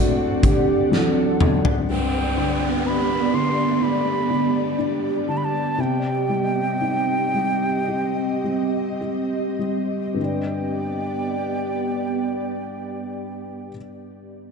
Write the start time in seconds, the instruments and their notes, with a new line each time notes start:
Already playing: felt piano D1 D2 A2 D3 A3, ambient pad C4 D5 F#5, french horn section F#4
0.43 felt piano D3, french horn section G4, kick, closed hi-hat
0.91 felt piano F#3, french horn section A4, snare
1.40 felt piano D3, mid tom
1.65 floor tom
1.89 felt piano G2, ambient pad B3 G4 D5, flute G5, downlifter
2.37 felt piano D3
2.85 felt piano B3, flute B5
3.33 felt piano D3, flute C6
3.81 felt piano D4, flute B5
4.30 felt piano D3
4.78 felt piano D4
5.28 felt piano D3, flute A5
5.37 flute B5
5.45 flute A5
5.78 felt piano C3, ambient pad C4 D#5, flute G5
6.29 felt piano G3
6.81 felt piano D#4
7.34 felt piano G3
7.88 felt piano G4
8.44 felt piano G3
9.01 felt piano G4
9.59 felt piano G3
10.14 felt piano G2 D3
10.18 felt piano G3 D4 B4, ambient pad B3 G4 D5, flute G5
10.24 felt piano D5